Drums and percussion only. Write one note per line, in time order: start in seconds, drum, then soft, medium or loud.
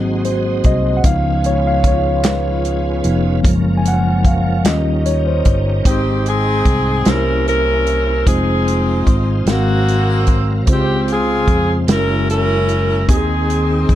0.25 closed hi-hat medium
0.64 kick medium
0.64 closed hi-hat soft
1.04 kick loud
1.04 closed hi-hat medium
1.44 closed hi-hat medium
1.84 kick medium
1.84 closed hi-hat soft
2.24 snare loud
2.24 clap medium
2.24 closed hi-hat medium
2.65 closed hi-hat medium
3.04 closed hi-hat medium
3.45 kick loud
3.45 closed hi-hat medium
3.85 closed hi-hat medium
4.25 kick medium
4.25 closed hi-hat soft
4.65 snare loud
4.65 clap medium
4.65 closed hi-hat medium
5.06 closed hi-hat medium
5.45 kick medium
5.45 closed hi-hat soft
5.85 kick loud
5.85 closed hi-hat medium
6.26 closed hi-hat medium
6.65 kick medium
6.65 closed hi-hat soft
7.05 snare loud
7.05 closed hi-hat medium
7.48 closed hi-hat soft
7.87 closed hi-hat soft
8.27 kick medium
8.27 closed hi-hat medium
8.68 closed hi-hat soft
9.07 kick medium
9.07 closed hi-hat soft
9.46 snare loud
9.46 closed hi-hat medium
9.88 closed hi-hat soft
10.27 kick medium
10.27 closed hi-hat soft
10.67 kick medium
10.67 closed hi-hat medium
11.08 closed hi-hat soft
11.48 kick medium
11.48 closed hi-hat soft
11.88 snare loud
11.88 closed hi-hat medium
12.30 closed hi-hat medium
12.69 closed hi-hat soft
13.09 kick loud
13.09 closed hi-hat medium
13.50 closed hi-hat medium
13.89 kick medium
13.89 closed hi-hat soft